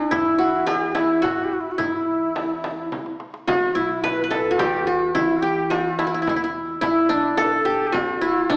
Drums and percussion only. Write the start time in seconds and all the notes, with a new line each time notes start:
0.12 frame drum, darbuka dum
0.41 darbuka ka
0.67 darbuka tek, frame drum
0.95 darbuka tek, frame drum
1.24 frame drum, darbuka dum
1.79 frame drum, darbuka dum
2.08 darbuka ka
2.36 darbuka tek, frame drum
2.64 darbuka tek, frame drum
2.92 darbuka tek, frame drum
3.06 darbuka ka
3.20 darbuka tek
3.34 darbuka ka
3.48 frame drum
4.04 frame drum
4.31 frame drum
4.59 frame drum
5.15 frame drum
5.71 frame drum
5.99 frame drum
6.27 frame drum
6.83 frame drum
7.38 frame drum
7.94 frame drum
8.50 frame drum